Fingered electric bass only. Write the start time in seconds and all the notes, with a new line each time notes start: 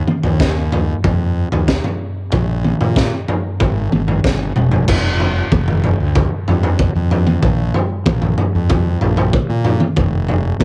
0.24 D#2
1.05 F2
1.53 D#2
2.32 A#1
2.81 A#2
3.61 G#1
3.93 G#1
4.24 G1
4.57 F1
4.88 F1
5.52 F1
6.00 D2
6.48 F2
6.95 F2
7.43 A#1
8.06 A#1
8.55 F2
9.03 A#1
9.49 A#2
9.97 F1
10.61 F1